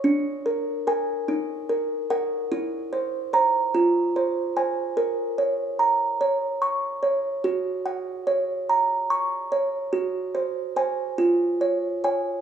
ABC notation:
X:1
M:6/8
L:1/8
Q:3/8=48
K:Bbm
V:1 name="Music box"
=D B [Ba] E B [Bg] | =E c [cb] F c [ca] | B d b d d' d | G g d b d' d |
G c [ca] F d [da] |]